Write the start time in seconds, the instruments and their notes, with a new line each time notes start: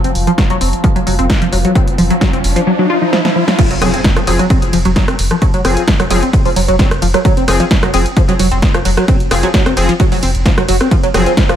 Already playing: synth drone F3 F4, riser
0.04 sub bass F1, synth arpeggio sound C4, closed hi-hat
0.15 sub bass F1, open hi-hat
0.27 synth arpeggio sound F3, closed hi-hat
0.38 synth arpeggio sound F#3, kick, snare, closed hi-hat
0.50 sub bass F1, synth arpeggio sound F#3, closed hi-hat
0.61 sub bass F1, synth arpeggio sound C4, open hi-hat
0.73 closed hi-hat
0.84 synth arpeggio sound F3, kick, closed hi-hat
0.96 sub bass F1, synth arpeggio sound F#3, closed hi-hat
1.07 sub bass F1, synth arpeggio sound F#3, open hi-hat
1.19 sub bass F1, synth arpeggio sound C4, closed hi-hat
1.30 kick, snare, closed hi-hat
1.42 sub bass F1, synth arpeggio sound F3, closed hi-hat
1.53 sub bass F1, synth arpeggio sound F#3, open hi-hat
1.65 synth arpeggio sound F#3, closed hi-hat
1.75 synth arpeggio sound C4, kick, closed hi-hat
1.88 sub bass F1, closed hi-hat
1.98 sub bass F1, synth arpeggio sound F3, open hi-hat
2.10 synth arpeggio sound F#3, closed hi-hat
2.21 synth arpeggio sound F#3, kick, snare, closed hi-hat
2.33 sub bass F1, synth arpeggio sound C4, closed hi-hat
2.44 sub bass F1, open hi-hat
2.56 synth arpeggio sound F3, closed hi-hat
2.67 synth arpeggio sound F#3
2.79 synth arpeggio sound F#3
2.90 synth arpeggio sound F4
3.02 synth arpeggio sound F3
3.13 synth arpeggio sound F3, snare
3.25 synth arpeggio sound F3, snare
3.36 synth arpeggio sound F3
3.48 synth arpeggio sound F#3, snare
3.59 synth arpeggio sound F3, kick, closed hi-hat, crash, ride, impact
3.71 sub bass F1, synth arpeggio sound F#3, closed hi-hat
3.81 sub bass F1, analog polysynth F3 C4 G#4, synth arpeggio sound F#3, cross-stick, open hi-hat, ride
3.94 synth arpeggio sound C4, closed hi-hat
4.04 kick, snare, closed hi-hat, ride
4.16 sub bass F1, synth arpeggio sound F3, cross-stick, closed hi-hat
4.27 sub bass F1, analog polysynth F3 C4 G#4, synth arpeggio sound F#3, open hi-hat, ride
4.39 synth arpeggio sound F#3, closed hi-hat
4.50 synth arpeggio sound C4, kick, closed hi-hat, ride
4.62 sub bass F1, closed hi-hat
4.73 sub bass F1, synth arpeggio sound F3, open hi-hat, ride
4.85 sub bass F1, synth arpeggio sound F#3, closed hi-hat
4.96 synth arpeggio sound F#3, kick, snare, closed hi-hat, ride
5.08 sub bass F1, synth arpeggio sound C4, cross-stick, closed hi-hat
5.19 sub bass F1, open hi-hat, ride
5.31 synth arpeggio sound F3, cross-stick, closed hi-hat
5.42 synth arpeggio sound F#3, kick, closed hi-hat, ride
5.54 sub bass F1, synth arpeggio sound F#3, closed hi-hat
5.65 sub bass F1, analog polysynth F3 C4 G#4, synth arpeggio sound C4, cross-stick, open hi-hat, ride
5.77 closed hi-hat
5.88 synth arpeggio sound F3, kick, snare, closed hi-hat, ride
6.00 sub bass F1, synth arpeggio sound F#3, cross-stick, closed hi-hat
6.10 sub bass F1, analog polysynth F3 C4 G#4, synth arpeggio sound F#3, open hi-hat, ride
6.23 synth arpeggio sound C4, closed hi-hat
6.33 kick, closed hi-hat, ride
6.45 sub bass F1, synth arpeggio sound F3, open hi-hat
6.56 sub bass F1, synth arpeggio sound F#3, open hi-hat, ride
6.68 sub bass F1, synth arpeggio sound F#3, closed hi-hat
6.79 synth arpeggio sound C4, kick, snare, closed hi-hat, ride
6.91 sub bass F1, cross-stick, closed hi-hat
7.02 sub bass F1, synth arpeggio sound F3, open hi-hat, ride
7.14 synth arpeggio sound F#3, cross-stick, closed hi-hat
7.25 synth arpeggio sound F#3, kick, closed hi-hat, ride
7.37 sub bass F1, synth arpeggio sound C4, closed hi-hat
7.48 sub bass F1, analog polysynth F3 C4 G#4, cross-stick, open hi-hat, ride
7.60 synth arpeggio sound F3, closed hi-hat
7.71 synth arpeggio sound F#3, kick, snare, closed hi-hat, ride
7.83 sub bass F1, synth arpeggio sound F#3, cross-stick, closed hi-hat
7.94 sub bass F1, analog polysynth F3 C4 G#4, synth arpeggio sound C4, open hi-hat, ride
8.06 closed hi-hat
8.17 synth arpeggio sound F3, kick, closed hi-hat, ride
8.29 sub bass F1, synth arpeggio sound F#3, closed hi-hat
8.39 sub bass F1, synth arpeggio sound F#3, open hi-hat, ride
8.52 sub bass F1, synth arpeggio sound C4, closed hi-hat
8.62 kick, snare, closed hi-hat, ride
8.74 sub bass F1, synth arpeggio sound F3, cross-stick, closed hi-hat
8.85 sub bass F1, synth arpeggio sound F#3, open hi-hat, ride
8.97 synth arpeggio sound F#3, cross-stick, closed hi-hat
9.08 synth arpeggio sound C4, kick, closed hi-hat, ride
9.20 sub bass F1, closed hi-hat
9.31 sub bass F1, analog polysynth F3 C4 G#4, synth arpeggio sound F3, cross-stick, open hi-hat, ride
9.43 synth arpeggio sound F#3, closed hi-hat
9.54 synth arpeggio sound F#3, kick, snare, closed hi-hat, ride
9.66 sub bass F1, synth arpeggio sound C4, cross-stick, closed hi-hat
9.77 sub bass F1, analog polysynth F3 C4 G#4, open hi-hat, ride
9.89 synth arpeggio sound F3, closed hi-hat
10.00 synth arpeggio sound F#3, kick, closed hi-hat, ride
10.12 sub bass F1, synth arpeggio sound F#3, open hi-hat
10.23 sub bass F1, synth arpeggio sound C4, open hi-hat, ride
10.35 sub bass F1, closed hi-hat
10.46 synth arpeggio sound F3, kick, snare, closed hi-hat, ride
10.58 sub bass F1, synth arpeggio sound F#3, cross-stick, closed hi-hat
10.69 sub bass F1, synth arpeggio sound F#3, open hi-hat, ride
10.81 synth arpeggio sound C4, cross-stick, closed hi-hat
10.91 synth arpeggio sound F3, kick, closed hi-hat, ride
11.03 sub bass F1, synth arpeggio sound F#3, closed hi-hat
11.14 sub bass F1, analog polysynth F3 C4 G#4, synth arpeggio sound F#3, cross-stick, open hi-hat, ride
11.26 synth arpeggio sound C4, closed hi-hat
11.37 synth arpeggio sound F3, kick, snare, closed hi-hat, ride
11.49 sub bass F1, synth arpeggio sound F3, cross-stick, closed hi-hat